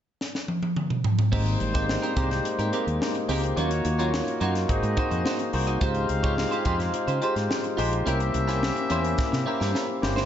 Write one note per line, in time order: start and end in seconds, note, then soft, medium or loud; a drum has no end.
0.21 snare medium
0.35 snare medium
0.48 high tom medium
0.63 high tom medium
0.76 mid tom medium
0.90 mid tom medium
1.04 floor tom loud
1.19 floor tom loud
1.32 1.56 G#1 medium
1.32 3.25 G3 medium
1.32 1.64 G#3 medium
1.32 1.64 A#3 medium
1.32 1.58 C4 medium
1.32 3.25 D#4 medium
1.32 1.64 D#4 medium
1.32 1.64 G4 medium
1.32 1.59 G4 medium
1.32 1.59 A#4 medium
1.32 3.25 C5 medium
1.32 1.65 C5 medium
1.32 kick loud
1.32 crash medium
1.46 closed hi-hat soft
1.60 1.96 G#1 medium
1.60 muted clean electric guitar stroke soft
1.60 closed hi-hat medium
1.74 2.06 G#3 medium
1.74 2.06 A#3 medium
1.74 1.85 C4 medium
1.74 2.06 D#4 medium
1.74 2.06 G4 medium
1.74 1.85 G4 medium
1.74 1.84 C5 medium
1.74 2.07 C5 loud
1.74 kick medium
1.74 snare soft
1.74 closed hi-hat medium
1.88 muted clean electric guitar stroke soft
1.88 snare loud
2.02 2.13 C4 medium
2.02 2.13 G4 medium
2.02 2.13 A#4 medium
2.02 closed hi-hat soft
2.16 2.40 C2 medium
2.16 2.59 G#3 medium
2.16 2.59 A#3 medium
2.16 2.29 C4 medium
2.16 2.59 D#4 medium
2.16 2.59 G4 medium
2.16 2.30 G4 medium
2.16 2.24 A#4 medium
2.16 2.29 A#4 loud
2.16 kick medium
2.16 closed hi-hat medium
2.24 2.62 C5 medium
2.30 muted clean electric guitar stroke soft
2.30 snare soft
2.30 closed hi-hat medium
2.45 muted clean electric guitar stroke soft
2.45 muted fretless electric bass stroke soft
2.45 closed hi-hat medium
2.59 2.70 G#2 loud
2.59 2.70 C4 soft
2.59 2.69 G4 medium
2.59 2.69 A#4 medium
2.59 closed hi-hat medium
2.72 3.15 G#3 medium
2.72 3.15 A#3 medium
2.72 2.85 C4 medium
2.72 3.15 D#4 medium
2.72 3.15 G4 medium
2.72 2.86 G4 medium
2.72 2.86 A#4 medium
2.72 3.15 D#5 medium
2.72 closed hi-hat medium
2.87 2.99 D#2 medium
2.87 muted clean electric guitar stroke soft
2.87 closed hi-hat soft
3.01 muted clean electric guitar stroke soft
3.01 snare medium
3.15 muted clean electric guitar stroke soft
3.15 closed hi-hat soft
3.28 3.52 C#2 medium
3.28 3.50 A#3 medium
3.28 3.42 C4 medium
3.28 3.50 D#4 medium
3.28 3.50 G4 medium
3.28 3.42 G4 medium
3.28 3.50 G#4 medium
3.28 3.42 A#4 medium
3.28 3.50 C5 medium
3.28 open hi-hat medium
3.43 muted clean electric guitar stroke soft
3.43 closed hi-hat medium
3.56 3.80 D#2 medium
3.56 3.70 F#3 medium
3.56 3.88 A#3 medium
3.56 4.40 A#3 medium
3.56 3.70 C#4 medium
3.56 3.88 D#4 medium
3.56 3.89 F4 medium
3.56 3.70 F4 medium
3.56 4.40 F#4 medium
3.56 3.89 F#4 medium
3.56 4.40 C#5 medium
3.56 3.89 C#5 medium
3.56 closed hi-hat medium
3.71 muted clean electric guitar stroke soft
3.71 closed hi-hat soft
3.85 4.20 D#2 medium
3.85 muted clean electric guitar stroke soft
3.85 closed hi-hat medium
3.98 4.10 F#3 medium
3.98 4.30 A#3 medium
3.98 4.09 C#4 medium
3.98 4.31 D#4 medium
3.98 4.09 F4 medium
3.98 4.31 F4 medium
3.98 4.31 F#4 medium
3.98 4.31 C#5 medium
3.98 closed hi-hat medium
4.14 snare loud
4.27 muted clean electric guitar stroke soft
4.27 closed hi-hat medium
4.41 4.64 F#2 medium
4.41 4.54 F#3 medium
4.41 4.68 A#3 medium
4.41 4.54 C#4 medium
4.41 4.68 D#4 medium
4.41 4.69 F4 medium
4.41 4.68 F#4 medium
4.41 4.54 F#4 medium
4.41 4.70 C#5 medium
4.41 closed hi-hat medium
4.55 muted clean electric guitar stroke soft
4.55 snare soft
4.55 closed hi-hat soft
4.69 4.81 G#1 medium
4.69 4.92 A#3 medium
4.69 5.52 C4 medium
4.69 4.92 D#4 medium
4.69 4.92 F#4 medium
4.69 5.52 G#4 medium
4.69 4.92 G#4 medium
4.69 4.92 C5 loud
4.69 5.52 D#5 medium
4.69 muted clean electric guitar stroke soft
4.69 kick medium
4.69 closed hi-hat medium
4.83 4.95 G#2 loud
4.83 muted clean electric guitar stroke soft
4.83 closed hi-hat soft
4.97 5.39 A#3 medium
4.97 5.10 D#4 medium
4.97 5.39 D#4 medium
4.97 5.40 F#4 medium
4.97 5.10 F#4 medium
4.97 5.40 G#4 medium
4.97 5.40 C5 medium
4.97 5.10 C5 medium
4.97 kick medium
4.97 closed hi-hat medium
5.11 5.23 F2 medium
5.11 5.22 D#4 soft
5.11 5.22 F#4 medium
5.11 5.21 C5 medium
5.11 closed hi-hat soft
5.25 5.38 D#4 medium
5.25 5.38 F#4 medium
5.25 5.39 C5 medium
5.25 snare loud
5.39 muted clean electric guitar stroke soft
5.39 closed hi-hat soft
5.53 5.77 C2 medium
5.53 5.74 A#3 medium
5.53 5.75 D#4 medium
5.53 5.75 F#4 medium
5.53 5.75 G#4 medium
5.53 5.75 C5 medium
5.53 muted clean electric guitar stroke soft
5.53 open hi-hat medium
5.67 5.78 D#4 soft
5.67 5.78 F#4 soft
5.67 5.77 D#5 medium
5.67 closed hi-hat medium
5.81 6.05 C#2 medium
5.81 6.13 G#3 medium
5.81 7.74 C4 medium
5.81 6.13 D#4 medium
5.81 6.07 F4 medium
5.81 6.13 F4 medium
5.81 6.08 G4 medium
5.81 6.14 G4 medium
5.81 7.74 G#4 medium
5.81 6.14 C5 medium
5.81 6.08 C5 medium
5.81 7.74 F5 medium
5.81 kick loud
5.81 closed hi-hat medium
5.95 closed hi-hat soft
6.09 6.44 C#2 medium
6.09 muted clean electric guitar stroke soft
6.09 closed hi-hat medium
6.23 6.55 G#3 medium
6.23 6.55 D#4 medium
6.23 6.55 F4 medium
6.23 6.34 F4 medium
6.23 6.34 G4 medium
6.23 6.56 G4 medium
6.23 6.56 C5 medium
6.23 6.33 C#5 medium
6.23 kick medium
6.23 closed hi-hat soft
6.38 muted clean electric guitar stroke soft
6.38 snare medium
6.51 6.62 F4 medium
6.51 6.62 G4 medium
6.51 6.61 C5 medium
6.51 closed hi-hat soft
6.65 6.89 F2 medium
6.65 7.08 G#3 medium
6.65 7.08 D#4 medium
6.65 6.78 F4 medium
6.65 7.08 F4 medium
6.65 6.78 G4 medium
6.65 7.08 G4 medium
6.65 7.08 C5 medium
6.65 6.78 C5 loud
6.65 kick medium
6.65 closed hi-hat medium
6.80 muted clean electric guitar stroke medium
6.80 snare soft
6.80 closed hi-hat soft
6.93 muted fretless electric bass stroke soft
6.93 muted clean electric guitar stroke soft
6.93 closed hi-hat medium
7.08 7.19 C#3 loud
7.08 7.19 F4 medium
7.08 7.18 G4 medium
7.08 7.18 C5 medium
7.08 closed hi-hat medium
7.22 7.64 G#3 medium
7.22 7.64 D#4 medium
7.22 7.34 F4 medium
7.22 7.64 F4 medium
7.22 7.64 G4 medium
7.22 7.35 G4 medium
7.22 7.64 C5 medium
7.22 7.35 C5 medium
7.22 closed hi-hat medium
7.36 7.48 G#2 medium
7.36 muted clean electric guitar stroke soft
7.36 snare soft
7.36 closed hi-hat soft
7.50 muted clean electric guitar stroke soft
7.50 snare medium
7.64 muted clean electric guitar stroke soft
7.64 closed hi-hat soft
7.77 8.02 A#1 medium
7.77 7.99 G#3 medium
7.77 7.99 D#4 medium
7.77 7.90 F4 medium
7.77 7.99 F4 medium
7.77 7.91 G4 medium
7.77 7.99 G4 medium
7.77 8.00 C5 medium
7.77 7.91 C5 medium
7.77 open hi-hat medium
7.92 muted clean electric guitar stroke soft
7.92 closed hi-hat medium
8.06 8.30 C2 medium
8.06 8.38 A#3 medium
8.06 8.19 C#4 medium
8.06 8.38 C#4 medium
8.06 9.99 C#4 medium
8.06 8.19 E4 medium
8.06 8.38 E4 medium
8.06 8.38 G4 medium
8.06 9.99 A#4 medium
8.06 8.19 A#4 medium
8.06 8.38 C5 medium
8.06 9.99 E5 medium
8.06 closed hi-hat medium
8.20 muted clean electric guitar stroke soft
8.20 closed hi-hat soft
8.34 8.69 C2 medium
8.34 muted clean electric guitar stroke soft
8.34 closed hi-hat medium
8.48 8.80 A#3 medium
8.48 8.80 C#4 medium
8.48 8.59 C#4 soft
8.48 8.80 E4 medium
8.48 8.58 E4 medium
8.48 8.80 G4 medium
8.48 8.58 A#4 medium
8.48 8.80 C5 medium
8.48 snare soft
8.48 closed hi-hat medium
8.63 snare medium
8.76 muted clean electric guitar stroke medium
8.76 closed hi-hat soft
8.90 9.14 E2 medium
8.90 9.32 A#3 medium
8.90 9.03 C#4 medium
8.90 9.32 C#4 medium
8.90 9.33 E4 medium
8.90 9.03 E4 medium
8.90 9.33 G4 medium
8.90 9.33 C5 medium
8.90 9.04 C5 medium
8.90 closed hi-hat medium
9.04 muted clean electric guitar stroke soft
9.04 closed hi-hat soft
9.18 muted clean electric guitar stroke soft
9.18 kick medium
9.18 snare medium
9.32 9.44 C3 loud
9.32 muted clean electric guitar stroke soft
9.32 snare medium
9.46 9.88 A#3 medium
9.46 9.59 C#4 medium
9.46 9.88 C#4 medium
9.46 9.89 E4 medium
9.46 9.59 E4 medium
9.46 9.89 G4 medium
9.46 9.59 A#4 medium
9.46 9.89 C5 medium
9.60 9.72 G2 medium
9.60 9.71 C#4 soft
9.60 9.71 E4 medium
9.60 9.70 A#4 medium
9.60 snare medium
9.74 9.87 C#4 medium
9.74 9.88 E4 medium
9.74 9.87 A#4 medium
9.74 snare medium
9.89 muted clean electric guitar stroke soft
10.02 10.25 G1 medium
10.02 10.23 A#3 medium
10.02 10.24 C#4 medium
10.02 10.24 E4 medium
10.02 10.24 G4 medium
10.02 10.24 C5 medium
10.02 muted clean electric guitar stroke soft
10.02 snare medium
10.16 10.25 C#4 soft
10.16 10.25 E4 soft
10.16 10.25 C5 medium
10.16 snare medium